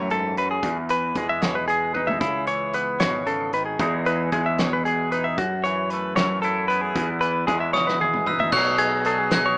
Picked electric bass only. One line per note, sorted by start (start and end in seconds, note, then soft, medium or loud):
0.00 0.60 F#2 medium
0.63 1.12 E2 loud
1.16 2.21 E2 medium
2.21 2.97 C#2 medium
3.00 3.76 G#1 medium
3.80 4.28 E2 loud
4.32 5.38 E2 medium
5.38 6.13 F#2 loud
6.16 6.91 F#2 medium
6.95 7.44 E2 loud
7.48 8.49 E2 medium
8.53 9.54 B1 loud